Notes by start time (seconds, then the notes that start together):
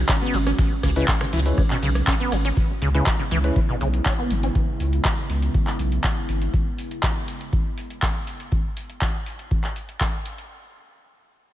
Already playing: C#3 G#3 C#4 F#4
0.09 C#4, kick, cross-stick, clap, closed hi-hat, ride, shaker
0.22 B3
0.34 G#1 E3, open hi-hat, ride, shaker
0.47 C#4, cross-stick, closed hi-hat, shaker
0.59 finger snap, kick, closed hi-hat, ride, shaker
0.83 C#2 C#3, kick, cross-stick, open hi-hat, ride, shaker
0.96 C#3 G#3 C#4 E4 B4, closed hi-hat, shaker
1.08 kick, clap, closed hi-hat, ride, shaker
1.21 C#3, finger snap, cross-stick
1.33 C#2 E3, open hi-hat, ride, shaker
1.46 G#3 C#4 E4 B4, closed hi-hat, shaker
1.58 kick, cross-stick, closed hi-hat, ride, shaker
1.70 B2, clap
1.82 B1 C#3, open hi-hat, ride, shaker
1.95 cross-stick, closed hi-hat, shaker
2.07 C#4, kick, clap, closed hi-hat, ride, shaker
2.20 B3
2.32 G#1 E3, cross-stick, open hi-hat, ride, shaker
2.45 C#4, closed hi-hat, shaker
2.57 C#3 G#3 B3 E4, kick, closed hi-hat
2.82 C#2 C#3, open hi-hat
2.94 C#3 G#3 C#4 E4 B4, closed hi-hat
3.06 kick, clap, closed hi-hat
3.19 C#3
3.31 C#2 E3, open hi-hat
3.44 G#3 C#4 E4 B4, closed hi-hat
3.56 kick, closed hi-hat
3.69 B2
3.81 B1 C#3, open hi-hat
3.94 closed hi-hat
4.06 C#4, kick, clap, closed hi-hat
4.19 B3
4.30 G#1 E3, open hi-hat
4.43 C#4, closed hi-hat
4.55 kick, closed hi-hat
4.80 C#2, open hi-hat
4.93 closed hi-hat
5.05 kick, clap, closed hi-hat
5.30 C#2, open hi-hat
5.42 closed hi-hat
5.54 kick, closed hi-hat
5.67 clap
5.79 B1, open hi-hat
5.92 closed hi-hat
6.04 kick, clap, closed hi-hat
6.29 G#1, open hi-hat
6.42 closed hi-hat
6.54 kick, closed hi-hat
6.78 open hi-hat
6.91 closed hi-hat
7.03 kick, clap, closed hi-hat
7.28 open hi-hat
7.41 closed hi-hat
7.53 kick, closed hi-hat
7.78 open hi-hat
7.90 closed hi-hat
8.02 kick, clap, closed hi-hat
8.27 open hi-hat
8.40 closed hi-hat
8.52 kick, closed hi-hat
8.77 open hi-hat
8.90 closed hi-hat
9.01 kick, clap, closed hi-hat
9.26 open hi-hat
9.39 closed hi-hat
9.51 kick, closed hi-hat
9.64 clap
9.76 open hi-hat
9.89 closed hi-hat
10.01 kick, clap, closed hi-hat
10.26 open hi-hat
10.38 closed hi-hat